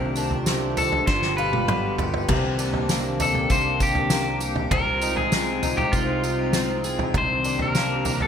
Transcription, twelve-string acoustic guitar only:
0.00 1.07 C3 medium
0.00 0.16 D4 medium
0.00 1.41 G4 medium
0.17 0.77 D4 medium
0.47 1.14 C4 medium
0.77 1.38 D4 medium
1.07 2.28 G2 medium
1.38 2.35 F4 medium
1.68 2.35 B3 medium
1.99 4.40 G4 medium
2.28 4.70 C3 medium
2.59 3.19 D4 medium
2.89 3.49 A#3 medium
3.20 3.79 D4 medium
3.50 4.10 A#3 medium
3.80 4.77 D4 medium
4.11 4.78 A#3 medium
4.41 4.77 G4 medium
4.71 7.14 C3 medium
5.02 5.63 D#4 medium
5.33 5.94 C4 medium
5.63 6.24 D#4 medium
5.94 6.54 C4 medium
6.24 7.45 D#4 medium
6.54 7.48 C4 medium
6.84 7.20 G#4 medium
7.15 8.28 C3 medium
7.45 8.05 D4 medium
7.75 8.28 A#3 medium
8.05 8.28 D4 medium

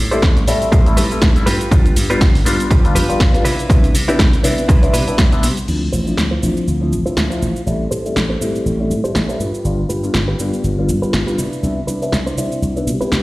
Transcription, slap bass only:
0.00 0.17 A2 medium
0.23 0.42 A1 medium
0.48 0.58 A2 medium
0.72 0.99 A1 medium
0.97 1.07 A2 medium
1.11 muted slap bass stroke soft
1.22 1.32 A1 medium
1.47 1.57 G2 medium
1.71 1.91 G1 medium
1.96 2.16 G2 medium
2.21 2.40 G1 medium
2.46 2.56 G2 medium
2.71 2.97 G1 medium
2.95 3.06 G2 loud
3.10 muted slap bass stroke soft
3.20 3.31 G1 medium
3.45 3.56 C3 medium
3.70 3.89 C2 medium
3.95 4.14 C3 medium
4.19 4.39 C2 medium
4.44 4.55 C3 medium
4.69 4.95 C2 medium
4.94 5.04 C3 loud
5.08 muted slap bass stroke soft
5.18 5.45 C2 medium
5.43 5.54 C3 medium
5.68 5.87 D2 medium
5.93 6.12 A1 medium
6.18 6.37 D2 medium
6.43 6.53 A1 medium
6.67 6.92 D2 medium
6.92 7.03 A1 medium
7.06 muted slap bass stroke soft
7.17 7.27 D2 medium
7.42 7.52 A1 medium
7.67 7.86 A1 medium
7.92 8.11 A2 medium
8.16 8.35 A1 medium
8.41 8.51 A2 medium
8.66 8.92 A1 medium
8.90 9.01 A2 medium
9.05 muted slap bass stroke soft
9.15 9.26 A1 medium
9.40 9.50 G2 medium
9.65 9.84 G1 medium
9.89 10.09 G2 medium
10.14 10.33 G1 medium
10.39 10.50 G2 medium
10.64 10.90 G1 medium
10.89 10.99 G2 medium
11.03 muted slap bass stroke soft
11.13 11.24 G1 medium
11.38 11.49 C3 medium
11.63 11.82 C2 medium
11.88 12.07 C3 medium
12.12 12.32 C2 medium
12.37 12.48 C3 medium
12.62 12.88 C2 medium
12.87 12.97 C3 medium
13.01 muted slap bass stroke soft
13.12 13.22 C2 medium

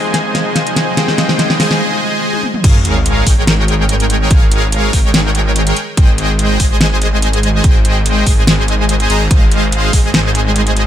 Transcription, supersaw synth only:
0.00 0.95 G#3 medium
0.00 0.95 G#4 medium
0.00 0.95 C5 medium
0.00 0.95 D#5 medium
0.00 0.95 G#5 loud
0.97 1.57 G#3 medium
0.97 1.57 G#4 medium
0.97 1.57 C5 medium
0.97 1.57 D#5 medium
0.97 1.57 G5 medium
1.60 2.42 G#3 medium
1.60 2.42 G#4 medium
1.60 2.42 C5 medium
1.60 2.42 D#5 medium
1.60 2.42 G#5 loud
2.64 3.24 G#3 medium
2.64 3.24 G#4 medium
2.64 3.24 A#4 medium
2.64 3.24 C#5 medium
2.64 3.24 F5 loud
3.26 4.28 G#3 loud
3.26 4.28 G#4 medium
3.26 4.28 A#4 medium
3.26 4.28 C#5 medium
3.26 4.28 G5 loud
4.31 4.91 G#3 medium
4.31 4.91 G#4 medium
4.31 4.91 A#4 medium
4.31 4.91 C#5 medium
4.31 4.91 F5 medium
4.93 5.75 G#3 loud
4.93 5.75 G#4 medium
4.93 5.75 A#4 medium
4.93 5.75 C#5 medium
4.93 5.75 G5 loud
5.97 6.57 G#3 medium
5.97 6.57 G#4 medium
5.97 6.58 C5 medium
5.97 6.58 D#5 medium
5.97 6.57 G5 medium
6.60 7.62 G#3 medium
6.60 7.62 G#4 medium
6.60 7.62 C5 medium
6.60 7.62 D#5 medium
6.60 7.62 G#5 loud
7.64 8.24 G#3 medium
7.64 8.24 G#4 medium
7.64 8.24 C5 medium
7.64 8.24 D#5 medium
7.64 8.24 G5 loud
8.26 9.08 G#3 loud
8.26 9.08 G#4 medium
8.26 9.08 C5 medium
8.26 9.08 D#5 medium
8.26 9.08 G#5 loud
9.10 9.21 G#3 medium
9.10 9.21 G#4 medium
9.10 9.21 C5 medium
9.10 9.21 D#5 medium
9.10 9.21 A#5 medium
9.31 9.91 G#3 medium
9.31 9.91 G#4 medium
9.31 9.91 C5 medium
9.31 9.91 D#5 medium
9.31 9.91 F5 loud
9.93 10.87 G#3 loud
9.93 10.87 G#4 medium
9.93 10.87 C5 medium
9.93 10.87 D#5 medium
9.93 10.87 G#5 loud

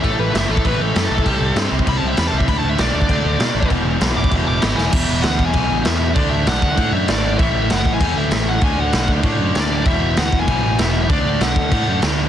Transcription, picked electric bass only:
0.04 0.14 A1 medium
0.19 0.29 A1 medium
0.34 0.45 F#1 loud
0.49 0.60 A1 medium
0.65 0.76 A1 medium
0.80 0.91 A1 loud
0.96 1.06 F#2 loud
1.10 1.21 B1 medium
1.26 1.36 C2 loud
1.40 1.51 C2 loud
1.56 1.67 G2 medium
1.72 1.82 C2 medium
1.87 1.98 C2 loud
2.02 2.13 C2 medium
2.18 2.29 E2 medium
2.33 2.44 C2 medium
2.48 2.59 D2 loud
2.64 2.75 D2 medium
2.79 2.90 B1 loud
2.95 3.05 D2 medium
3.09 3.20 D2 medium
3.25 3.35 D2 loud
3.39 3.50 B2 medium
3.55 3.66 A1 medium
3.70 3.81 E1 medium
3.85 3.96 E1 loud
4.01 4.12 B1 loud
4.16 4.27 E1 medium
4.32 4.42 E1 medium
4.47 4.58 E1 loud
4.63 4.74 G#1 medium
4.78 4.88 E1 medium
4.93 5.06 E1 loud
5.08 5.22 E1 loud
5.24 5.38 D2 loud
5.39 5.53 E1 medium
5.54 5.68 B1 loud
5.70 5.84 A1 loud
5.86 6.13 E2 loud
6.16 6.29 D2 loud
6.32 6.45 D2 medium
6.47 6.60 B1 loud
6.62 6.76 D2 medium
6.78 6.91 A2 medium
6.92 7.06 F#2 loud
7.09 7.36 G#1 medium
7.40 7.53 A1 loud
7.54 7.68 A1 loud
7.69 7.83 F#1 loud
7.85 7.99 A1 medium
8.01 8.14 E2 medium
8.16 8.29 D2 medium
8.31 8.58 A1 medium
8.62 8.76 D2 medium
8.78 8.91 D2 loud
8.94 9.07 B1 loud
9.08 9.22 D2 medium
9.23 9.37 A2 loud
9.39 9.53 F#2 medium
9.55 9.82 D2 loud
9.86 9.99 E1 medium
10.02 10.15 E1 loud
10.17 10.31 D2 medium
10.33 10.46 E1 medium
10.48 10.61 B1 medium
10.64 10.77 A1 loud
10.79 11.06 E1 medium
11.09 11.23 D2 loud
11.25 11.39 D2 medium
11.41 11.54 B1 loud
11.56 11.70 D2 medium
11.72 11.85 A2 loud
11.88 12.01 F#2 loud
12.03 12.29 D2 medium

